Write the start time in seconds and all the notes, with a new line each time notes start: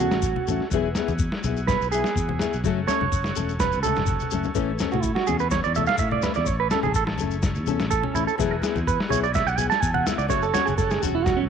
Already playing: C#4 F#4 A4
0.00 A3 C#4 F#4 A4, high conga
0.11 A1, snare, shekere
0.22 kick, shekere
0.36 high conga
0.47 A1 A3 C#4 A4, low conga, shekere
0.60 snare
0.70 E1 F#3 B3 E4 F#4 G#4, kick, shekere
0.95 B3 E4 G#4, snare, low conga, shekere
1.08 E2, high conga, shekere
1.19 kick, shekere
1.32 snare
1.44 B1 B3 E4 G#4, high conga, low conga, shekere
1.57 shekere
1.67 B4, kick, snare, low conga, shekere
1.81 B1, shekere
1.92 E4 G#4, shekere
1.96 B3
2.04 snare, shekere
2.16 E2, kick, shekere
2.29 high conga
2.39 B3 E4 G#4, snare, low conga, shekere
2.53 B1, shekere
2.64 F#1 F#3 A3 C#4 A4, kick, snare, shekere
2.87 A3 C#4 A4 C#5, snare, low conga, shekere
3.01 F#1, high conga
3.12 kick, shekere
3.24 snare, shekere
3.36 E1 A3 C#4 A4, low conga, shekere
3.49 shekere
3.60 B4, kick, snare, low conga, shekere
3.72 C#2, shekere
3.83 A3 C#4 A4, high conga, shekere
3.96 F#1, snare, high conga, shekere
4.06 kick, high conga, shekere
4.20 high conga, shekere
4.31 F#1 A3 C#4 A4, low conga, shekere
4.43 low conga, shekere
4.55 A1 E3 A3 C#4 E4 A4, kick, shekere
4.79 A3 C#4 A4, snare, low conga, shekere
4.91 A2 F#4, high conga, shekere
5.03 E4, kick, shekere
5.15 F#4, snare
5.27 E2 A3 C#4 G#4, high conga, low conga, shekere
5.39 B4, shekere
5.51 C#5, kick, snare, low conga, shekere
5.64 E2 D5, shekere
5.75 A3 A4 E5, high conga, shekere
5.86 F5, snare, shekere
5.98 A2 E5, kick, shekere
6.11 D5, high conga
6.22 A3 B4, muted nylon-string guitar stroke, snare, low conga, shekere
6.34 E2 D5, snare, shekere
6.46 A1 C#5, kick, shekere
6.60 B4
6.71 C#4 A4, snare, low conga, shekere
6.76 A3
6.83 A1 G#4, high conga, shekere
6.94 A4, kick, shekere
7.07 muted clean electric guitar stroke, snare
7.18 F#1 C#4 A4, high conga, low conga, shekere
7.23 A3
7.31 shekere
7.42 kick, snare, low conga, shekere
7.55 E2, shekere
7.66 A3 C#4 A4, high conga, shekere
7.80 A1, snare, shekere
7.91 A4, kick, shekere
8.03 C#4, high conga
8.14 A1 A3 C#4 E4 A4, low conga, shekere
8.27 A4, shekere
8.38 E1 F#3 B3 E4 F#4 G#4, muted clean electric guitar stroke, kick, snare, shekere
8.51 A4
8.62 B3 E4 G#4 B4, snare, low conga, shekere
8.75 E2 C5, high conga, shekere
8.87 B4, kick, shekere
9.00 snare
9.09 B1 B3 E4 G#4 C#5, high conga, low conga, shekere
9.24 D5, shekere
9.34 E5, kick, snare, low conga, shekere
9.46 B1 F#5, shekere
9.57 B3 G#4 G#5, high conga, shekere
9.70 A5, snare, shekere
9.82 E2 G#5, kick, shekere
9.94 F#5, high conga
10.06 B3 E4 E5, muted nylon-string guitar stroke, snare, low conga, shekere
10.18 C#2 D5, shekere
10.28 F#1 A3 C#4 F#4 A4 C#5, kick, snare, shekere
10.42 A4, shekere
10.53 C#4 F#4 C#5, snare, low conga, shekere
10.66 F#1 G#4, high conga, shekere
10.78 A4, kick, snare, shekere
10.90 G#4, snare, shekere
11.02 E1 C#4 F#4, high conga, low conga, shekere
11.15 E4
11.25 F#4, kick, snare, low conga, shekere
11.37 C#2 C#4